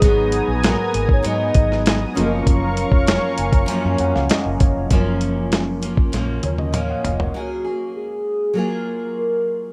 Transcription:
<<
  \new Staff \with { instrumentName = "Analog synth pad" } { \time 4/4 \key fis \major \tempo 4 = 98 << { <b dis'''>2.~ <b dis'''>8 <ais' eis'' cis'''>8~ | <ais' eis'' cis'''>1 | r1 | r1 | } \\ { <gis'' ais''>1~ | <gis'' ais''>1 | r1 | r1 | } >> }
  \new Staff \with { instrumentName = "Soft synth lead" } { \time 4/4 \key fis \major gis'4 ais'8. cis''16 dis''4. dis''8 | cis''2. r4 | r1 | fis'4 gis'4 ais'4 ais'4 | }
  \new Staff \with { instrumentName = "Synth keys" } { \time 4/4 \key fis \major << { r1 | r4. gis''16 ais''16 gis''8 fis''16 eis''16 dis''8 cis''8 | r2 r8 <ais' cis''>16 dis''16 <cis'' eis''>16 <dis'' fis''>16 dis''16 <ais' cis''>16~ | <ais' cis''>16 r2. r8. | } \\ { <fis ais b dis' gis'>2.~ <fis ais b dis' gis'>8 <fis cis' eis' gis' ais'>8~ | <fis cis' eis' gis' ais'>2.~ <fis cis' eis' gis' ais'>8 r8 | <fis cis' eis' ais'>1 | r1 | } >> }
  \new Staff \with { instrumentName = "Steel-string acoustic guitar" } { \time 4/4 \key fis \major <gis, fis b dis'>4 <gis, fis b dis'>4 <gis, fis b dis'>4. <fis, eis ais cis'>8~ | <fis, eis ais cis'>4 <fis, eis ais cis'>4 <fis, eis ais cis'>2 | <fis, eis ais cis'>4. <eis ais cis'>8 <fis, eis ais cis'>4 <eis ais cis'>4 | <fis ais gis'>8 <ais gis'>4. <fis ais eis' gis'>2 | }
  \new Staff \with { instrumentName = "Fingered electric bass" } { \clef bass \time 4/4 \key fis \major gis,,8. ais,,8 r16 gis,,8 gis,8 gis,,4 fis,,8 | fis,,8. eis,,8 r16 fis,,8 r16 fis,16 eis,16 cis,16 r16 fis,,16 fis,,16 eis,,16 | fis,,2 ais,,8 dis,4 eis,,8 | r1 | }
  \new DrumStaff \with { instrumentName = "Drums" } \drummode { \time 4/4 <hh bd>8 hh8 <hh sn>8 hh16 bd16 hh8 <hh bd>16 sn16 <hh sn>8 hh8 | <hh bd>8 hh16 bd16 <hh sn>8 hh16 <hh bd>16 hh8 hh16 sn16 <hh sn>8 <hh bd>8 | <hh bd>8 hh8 <hh sn>8 hh16 bd16 <hh sn>8 <hh tommh>16 tommh16 <hh toml>8 <hh tomfh>16 tomfh16 | r4 r4 r4 r4 | }
>>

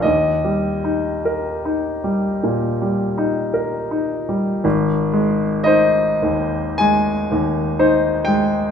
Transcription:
<<
  \new Staff \with { instrumentName = "Grand piano" } { \time 4/4 \key ees \major \tempo 4 = 55 ees''2. r4 | \key aes \major r4 ees''4 aes''4. g''8 | }
  \new Staff \with { instrumentName = "Grand piano" } { \clef bass \time 4/4 \key ees \major \tuplet 3/2 { ees,8 g8 ees'8 bes'8 ees'8 g8 bes,8 g8 ees'8 bes'8 ees'8 g8 } | \key aes \major aes,,8 aes8 <ees' c''>8 ees,8 aes8 ees,8 <ees' c''>8 aes8 | }
>>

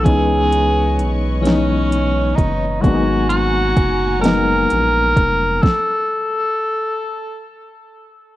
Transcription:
<<
  \new Staff \with { instrumentName = "String section" } { \time 6/8 \key aes \dorian \tempo 4. = 43 <b' des'' ees'' des'''>2. | <ges'' aes'' bes''>2. | r2. | }
  \new Staff \with { instrumentName = "Tenor saxophone" } { \time 6/8 \key aes \dorian aes'4 r8 des'4 ees'8 | ges'8 ges'4 bes'4. | a'2 r4 | }
  \new Staff \with { instrumentName = "Reed electric piano" } { \time 6/8 \key aes \dorian <fes aes ces' des' ees'>4 r8 <fes aes ces' des' ees'>4 r8 | <ges aes bes ces' d' ees'>4 r8 <ges aes bes ces' ees'>4 r8 | r2. | }
  \new Staff \with { instrumentName = "Analog synth bass" } { \clef bass \time 6/8 \key aes \dorian des,4 ces,4. ges,,8 | aes,,4 ges,,4 bes,,8 f,,8 | r2. | }
  \new DrumStaff \with { instrumentName = "Drums" } \drummode { \time 6/8 <hh bd>8 hh8 hh8 <hh sn>8 hh8 <hh bd>8 | <hh bd>8 hh8 <hh bd>8 <hh sn>8 hh8 <hh bd>8 | <bd sn>4. r4. | }
>>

